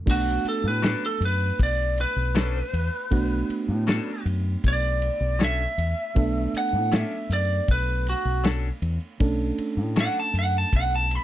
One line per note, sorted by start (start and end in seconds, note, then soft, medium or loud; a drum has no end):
0.06 0.37 B1 medium
0.06 3.07 A3 medium
0.06 3.07 B3 soft
0.06 3.08 D4 medium
0.06 3.08 F#4 medium
0.06 kick loud
0.06 crash loud
0.11 0.46 F#4 medium
0.44 muted fingered electric bass stroke soft
0.44 ride medium
0.49 0.66 A4 medium
0.64 0.94 A2 loud
0.68 1.03 B4 medium
0.82 1.06 F#3 medium
0.82 1.06 C#4 medium
0.82 1.06 D4 medium
0.82 1.07 A4 medium
0.82 snare loud
0.82 ride medium
1.06 1.22 A4 medium
1.20 1.50 F#2 medium
1.20 ride medium
1.25 1.60 B4 medium
1.59 2.04 B1 loud
1.59 1.98 D5 medium
1.59 kick medium
1.59 ride medium
1.98 4.24 B4 medium
1.98 ride medium
2.16 2.61 B1 medium
2.35 2.58 F#3 medium
2.35 2.58 C#4 medium
2.35 2.59 D4 medium
2.35 2.59 A4 medium
2.35 snare loud
2.35 ride medium
2.73 2.88 E2 medium
2.73 ride medium
3.11 3.41 B1 medium
3.11 6.12 A3 medium
3.11 6.12 B3 medium
3.11 6.12 D4 medium
3.11 6.13 F#4 medium
3.11 kick loud
3.11 ride medium
3.49 muted fingered electric bass stroke soft
3.49 ride medium
3.68 3.98 A2 medium
3.87 4.10 F#3 medium
3.87 4.11 C#4 medium
3.87 4.11 D4 loud
3.87 4.11 A4 loud
3.87 snare loud
3.87 ride medium
4.25 4.55 F#2 medium
4.25 ride medium
4.64 5.09 B1 loud
4.64 5.40 D5 medium
4.64 kick medium
4.64 ride medium
5.02 ride medium
5.20 5.65 B1 medium
5.39 5.63 F#3 medium
5.39 5.63 C#4 medium
5.39 5.63 D4 medium
5.39 5.63 A4 medium
5.39 snare loud
5.39 ride medium
5.44 6.53 E5 medium
5.78 5.93 E2 medium
5.78 ride medium
6.15 6.46 B1 medium
6.15 9.16 A3 medium
6.15 9.16 B3 medium
6.15 9.16 D4 medium
6.15 9.17 A4 medium
6.15 kick loud
6.15 ride medium
6.54 muted fingered electric bass stroke soft
6.54 ride medium
6.58 6.96 F#5 medium
6.73 7.03 A2 medium
6.92 7.15 F#3 medium
6.92 7.15 C#4 medium
6.92 7.16 D4 medium
6.92 7.16 A4 medium
6.92 snare loud
6.92 ride medium
6.96 7.31 E5 medium
7.29 7.59 F#2 medium
7.29 7.69 D5 medium
7.29 ride medium
7.68 8.13 B1 medium
7.68 8.07 B4 medium
7.68 kick medium
7.68 ride medium
8.06 8.45 F#4 medium
8.06 ride medium
8.25 8.70 B1 medium
8.44 8.67 F#3 medium
8.44 8.67 C#4 medium
8.44 8.68 D4 medium
8.44 8.68 A4 medium
8.44 snare loud
8.44 ride medium
8.82 8.97 E2 medium
8.82 ride medium
9.20 9.50 B1 medium
9.20 11.24 A3 medium
9.20 11.24 C#4 medium
9.20 11.24 D4 medium
9.20 11.24 A4 medium
9.20 kick loud
9.20 ride medium
9.58 muted fingered electric bass stroke soft
9.58 ride medium
9.77 10.07 A2 medium
9.96 10.19 F#3 medium
9.96 10.19 C#4 medium
9.96 10.20 D4 medium
9.96 10.20 A4 medium
9.96 snare loud
9.96 ride medium
10.01 10.17 F#5 loud
10.20 10.36 A5 medium
10.33 10.63 F#2 medium
10.33 ride medium
10.39 10.55 F#5 loud
10.58 10.74 A5 medium
10.73 11.17 B1 medium
10.73 10.93 F#5 loud
10.73 kick medium
10.73 ride medium
10.96 11.12 A5 medium
11.11 ride medium
11.15 11.24 B5 loud